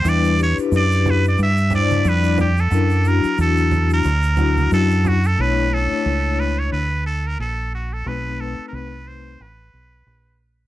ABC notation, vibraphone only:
X:1
M:4/4
L:1/8
Q:"Swing 16ths" 1/4=90
K:Bm
V:1 name="Vibraphone"
[G,DEB] [DEGB]3 z [G,DE=cd]2 z | [F,DE^A] [F,DEF]3 z [F,DEF]2 z | [A,DEc] [A,CDEc]3 z4 | [A,=C^DB] [A,CDB]3 z4 |]